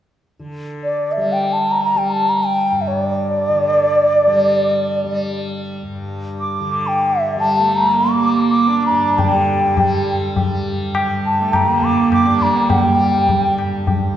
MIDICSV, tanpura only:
0, 0, Header, 1, 2, 480
1, 0, Start_track
1, 0, Tempo, 500000
1, 13601, End_track
2, 0, Start_track
2, 0, Title_t, "Tanpura"
2, 0, Program_c, 0, 104
2, 378, Note_on_c, 0, 50, 46
2, 1124, Note_on_c, 0, 55, 44
2, 1870, Note_off_c, 0, 55, 0
2, 1870, Note_on_c, 0, 55, 48
2, 2609, Note_on_c, 0, 43, 50
2, 3347, Note_off_c, 0, 50, 0
2, 3351, Note_on_c, 0, 50, 47
2, 4097, Note_off_c, 0, 55, 0
2, 4097, Note_on_c, 0, 55, 51
2, 4839, Note_off_c, 0, 55, 0
2, 4839, Note_on_c, 0, 55, 50
2, 5592, Note_off_c, 0, 43, 0
2, 5596, Note_on_c, 0, 43, 53
2, 6333, Note_off_c, 0, 50, 0
2, 6336, Note_on_c, 0, 50, 52
2, 7068, Note_off_c, 0, 55, 0
2, 7068, Note_on_c, 0, 55, 54
2, 7819, Note_off_c, 0, 55, 0
2, 7819, Note_on_c, 0, 55, 55
2, 8550, Note_off_c, 0, 43, 0
2, 8554, Note_on_c, 0, 43, 54
2, 8807, Note_off_c, 0, 50, 0
2, 8811, Note_on_c, 0, 50, 52
2, 9404, Note_off_c, 0, 55, 0
2, 9404, Note_on_c, 0, 55, 54
2, 10013, Note_off_c, 0, 55, 0
2, 10013, Note_on_c, 0, 55, 54
2, 10601, Note_off_c, 0, 43, 0
2, 10604, Note_on_c, 0, 43, 54
2, 11197, Note_off_c, 0, 50, 0
2, 11201, Note_on_c, 0, 50, 52
2, 11782, Note_off_c, 0, 55, 0
2, 11782, Note_on_c, 0, 55, 53
2, 12373, Note_off_c, 0, 55, 0
2, 12373, Note_on_c, 0, 55, 51
2, 12958, Note_off_c, 0, 43, 0
2, 12961, Note_on_c, 0, 43, 49
2, 13560, Note_off_c, 0, 50, 0
2, 13564, Note_on_c, 0, 50, 55
2, 13601, Note_off_c, 0, 43, 0
2, 13601, Note_off_c, 0, 50, 0
2, 13601, Note_off_c, 0, 55, 0
2, 13601, End_track
0, 0, End_of_file